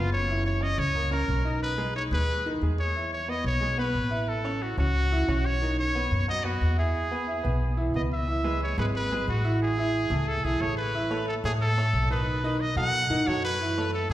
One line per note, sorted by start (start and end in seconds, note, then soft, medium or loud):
0.00 0.73 F#1 medium
0.00 0.22 B3 medium
0.00 0.23 B4 medium
0.12 0.43 C#5 medium
0.28 0.56 E3 medium
0.28 0.56 E4 medium
0.46 0.64 C#5 medium
0.61 0.88 C#4 medium
0.61 0.88 C#5 medium
0.61 0.81 D#5 loud
0.78 1.25 C#2 loud
0.78 1.12 C#5 loud
0.95 1.09 A#3 medium
0.95 1.09 A#4 medium
1.11 1.39 C#4 medium
1.11 1.58 A#4 medium
1.11 1.39 C#5 medium
1.28 2.06 B1 medium
1.44 1.72 D#4 medium
1.44 1.72 D#5 medium
1.63 1.93 B4 medium
1.78 1.92 G#3 medium
1.78 1.92 G#4 medium
1.95 2.09 D#4 medium
1.95 2.03 C#5 medium
1.95 2.09 D#5 medium
2.11 2.58 D#2 medium
2.11 2.39 G#3 medium
2.11 2.39 G#4 medium
2.11 2.49 B4 loud
2.46 2.59 D#3 medium
2.46 2.59 D#4 medium
2.62 3.39 E2 medium
2.62 2.90 G#3 medium
2.62 2.90 G#4 medium
2.79 3.10 C#5 medium
2.96 3.23 E3 medium
2.96 3.23 E4 medium
3.13 3.31 C#5 medium
3.28 3.56 B3 medium
3.28 3.56 B4 medium
3.28 3.46 D#5 medium
3.44 3.91 B1 medium
3.44 3.77 C#5 loud
3.61 3.75 G#3 medium
3.61 3.75 G#4 medium
3.78 4.05 B3 medium
3.78 4.05 B4 medium
3.78 4.30 B4 medium
3.95 4.73 A1 medium
4.11 4.38 E4 medium
4.11 4.38 E5 medium
4.29 4.64 A4 medium
4.44 4.58 C#4 medium
4.44 4.58 C#5 medium
4.61 4.75 E4 medium
4.61 4.78 F#4 medium
4.61 4.75 E5 medium
4.77 5.24 C#2 medium
4.77 5.05 C#4 medium
4.77 5.47 F#4 loud
4.77 5.06 C#5 medium
5.12 5.26 E3 medium
5.12 5.25 E4 medium
5.28 6.06 B1 medium
5.28 5.56 C#4 medium
5.28 5.56 C#5 medium
5.46 5.79 C#5 medium
5.62 5.89 D#3 medium
5.62 5.89 D#4 medium
5.79 6.25 C#5 medium
5.95 6.22 B3 medium
5.95 6.22 B4 medium
6.11 6.58 F#2 loud
6.28 6.42 F#3 medium
6.28 6.42 F#4 medium
6.28 6.46 D#5 loud
6.44 6.72 B3 medium
6.44 6.78 F#4 medium
6.44 6.72 B4 medium
6.61 7.39 E2 medium
6.78 7.05 E4 medium
6.78 7.91 G#4 medium
6.78 7.05 E5 medium
7.11 7.25 B3 medium
7.11 7.25 B4 medium
7.27 7.41 E4 medium
7.27 7.42 E5 medium
7.43 7.91 B1 medium
7.43 7.72 B3 medium
7.43 7.71 B4 medium
7.77 7.91 E3 medium
7.77 7.91 E4 medium
7.94 8.72 C#2 medium
7.94 8.22 B3 medium
7.94 8.23 B4 medium
7.94 8.02 D#5 medium
8.13 8.59 E5 medium
8.28 8.41 E3 medium
8.28 8.42 E4 medium
8.28 8.42 E5 medium
8.44 8.72 G#3 medium
8.44 8.72 G#4 medium
8.44 8.72 B4 medium
8.63 8.78 C#5 medium
8.78 9.24 G#1 loud
8.78 9.05 G#3 medium
8.78 9.05 G#4 medium
8.78 9.06 B4 medium
8.78 8.86 B4 medium
8.96 9.26 B4 loud
9.12 9.39 G#3 medium
9.12 9.39 G#4 medium
9.12 9.39 B4 medium
9.27 10.05 A1 medium
9.27 9.59 F#4 medium
9.44 9.72 E3 medium
9.44 9.72 E4 medium
9.44 9.72 E5 medium
9.62 10.30 G#4 medium
9.78 10.05 E3 medium
9.78 10.05 E4 medium
9.78 10.06 E5 medium
10.10 10.41 C#2 loud
10.10 10.38 A3 medium
10.10 10.38 G#4 medium
10.10 10.38 A4 medium
10.28 10.46 A4 medium
10.44 10.59 B1 medium
10.44 10.58 E3 medium
10.44 10.58 E4 medium
10.44 10.63 G#4 medium
10.44 10.58 E5 medium
10.60 11.38 A1 medium
10.60 10.88 A3 medium
10.60 10.88 G#4 medium
10.60 10.88 A4 medium
10.60 10.77 C#5 loud
10.77 11.24 B4 medium
10.94 11.08 E3 medium
10.94 11.08 E4 medium
10.94 11.08 E5 medium
11.10 11.38 A3 medium
11.10 11.38 A4 medium
11.10 11.38 C#5 medium
11.28 11.35 A4 medium
11.44 11.90 A2 loud
11.44 11.72 A3 medium
11.44 11.52 G#4 medium
11.44 11.72 A4 medium
11.44 11.72 C#5 medium
11.61 12.07 A4 loud
11.77 12.05 A3 medium
11.77 12.05 A4 medium
11.77 12.05 C#5 medium
11.93 12.71 B1 medium
12.10 12.38 D#3 medium
12.10 12.38 D#4 medium
12.10 12.62 B4 medium
12.10 12.38 D#5 medium
12.44 12.71 D#3 medium
12.44 12.71 D#4 medium
12.44 12.71 D#5 medium
12.61 12.77 D#5 loud
12.76 13.07 B2 loud
12.76 13.04 F#3 medium
12.76 13.04 F#4 medium
12.76 13.04 A4 medium
12.76 13.29 F#5 loud
13.10 13.26 G#2 medium
13.10 13.24 D#3 medium
13.10 13.24 D#4 loud
13.10 13.24 D#5 medium
13.26 14.04 F#2 medium
13.26 13.54 F#3 medium
13.26 13.54 F#4 medium
13.26 13.54 A4 medium
13.26 13.44 C#5 loud
13.45 13.90 B4 loud
13.61 13.74 E3 medium
13.61 13.74 E4 medium
13.61 13.74 E5 medium
13.77 14.04 A3 medium
13.77 14.05 A4 medium
13.77 14.05 C#5 medium
13.94 14.09 A4 loud
14.10 14.13 C#2 loud